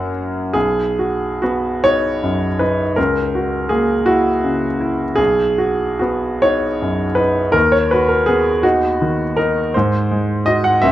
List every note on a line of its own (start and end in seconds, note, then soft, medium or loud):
0.00 0.57 F#2 medium
0.00 0.10 F#3 medium
0.00 0.51 A#4 soft
0.00 0.51 C#5 soft
0.00 0.52 F#5 medium
0.53 2.93 B1 medium
0.53 1.41 G#4 medium
0.99 1.40 F#4 soft
1.42 2.08 B3 soft
1.42 1.84 F#4 medium
1.84 2.46 D#4 soft
1.84 2.61 C#5 medium
2.23 2.83 F#2 soft
2.59 2.97 D#4 soft
2.59 2.97 B4 medium
2.96 5.15 C#2 medium
2.96 3.70 A#4 medium
3.35 3.93 F#4 soft
3.69 4.30 A#3 soft
3.69 4.07 G#4 medium
4.06 4.66 E4 soft
4.06 5.18 F#4 medium
4.44 5.04 C#3 soft
4.81 5.19 E4 soft
5.16 7.51 B1 medium
5.16 6.00 G#4 medium
5.58 5.98 F#4 medium
5.99 6.67 B3 soft
5.99 6.42 F#4 medium
6.42 7.04 D#4 medium
6.42 7.18 C#5 medium
6.82 7.41 F#2 soft
7.15 7.55 D#4 medium
7.15 7.54 B4 medium
7.52 9.69 D#2 medium
7.52 7.72 A#4 medium
7.72 7.90 C#5 medium
7.91 8.50 F#4 soft
7.91 8.09 B4 medium
8.09 8.27 A#4 medium
8.26 8.87 B3 medium
8.26 8.63 G#4 medium
8.63 9.24 D#4 medium
8.63 9.38 F#4 medium
9.01 9.60 D#3 soft
9.37 9.74 D#4 soft
9.37 9.73 A#4 medium
9.74 10.81 G#2 medium
9.74 10.46 C5 medium
10.11 10.69 G#3 soft
10.46 10.80 D#4 soft
10.46 10.80 F#4 soft
10.46 10.64 D#5 medium
10.64 10.83 F#5 medium
10.82 10.92 C#2 medium
10.82 10.92 E5 medium